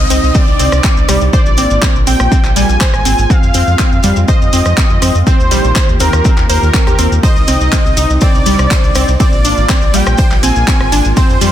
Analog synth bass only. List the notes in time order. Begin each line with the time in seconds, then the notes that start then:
0.10 C2
0.23 C2
0.48 C2
0.59 C2
0.72 C2
0.97 C2
1.09 C2
1.21 C2
1.46 A#1
1.58 G#1
1.71 G#1
1.95 A#1
2.07 A#1
2.20 A#1
2.45 A#1
2.56 A#1
2.69 A#1
2.94 G#1
3.05 G#1
3.18 G#1
3.43 F2
3.55 F2
3.67 F2
3.92 F2
4.04 F2
4.17 F2
4.41 F2
4.53 F2
4.66 F2
4.90 F2
5.02 F2
5.15 F2
5.39 D#2
5.51 A#1
5.64 A#1
5.89 D#2
6.00 D#2
6.13 D#2
6.38 D#2
6.49 D#2
6.62 D#2
6.87 D#2
6.99 D#2
7.11 D#2
7.36 C2
7.48 C2
7.61 C2
7.85 C2
7.97 C2
8.10 C2
8.34 C2
8.46 C2
8.59 C2
8.84 C2
8.95 C2
9.08 C2
9.33 A#1
9.45 G#1
9.57 G#1
9.82 A#1
9.94 A#1
10.07 A#1
10.31 A#1
10.43 A#1
10.56 A#1
10.80 G#1
10.92 G#1
11.05 G#1
11.30 F2
11.41 F2